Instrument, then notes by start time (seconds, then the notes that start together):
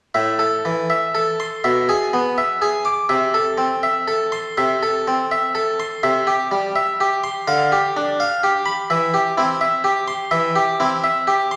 harpsichord
0.14 A2 E5
0.39 A4
0.65 E3
0.90 E5
1.15 A4
1.40 C6
1.64 B2 E5
1.89 G#4
2.13 B3
2.38 E5
2.62 G#4
2.85 D6
3.09 C3 E5
3.34 A4
3.58 C4
3.83 E5
4.08 A4
4.32 C6
4.58 C3 E5
4.83 A4
5.07 C4
5.31 E5
5.55 A4
5.80 C6
6.03 C3 E5
6.27 G4
6.51 G3
6.76 E5
7.00 G4
7.24 C6
7.47 D3 F5
7.72 G4
7.97 D4
8.20 F5
8.43 G4
8.66 B5
8.90 E3 E5
9.14 G4
9.37 C4 E4
9.61 E5
9.84 G4
10.08 C6
10.31 E3 E5
10.55 G4
10.80 C4 E4
11.04 E5
11.27 G4
11.51 C6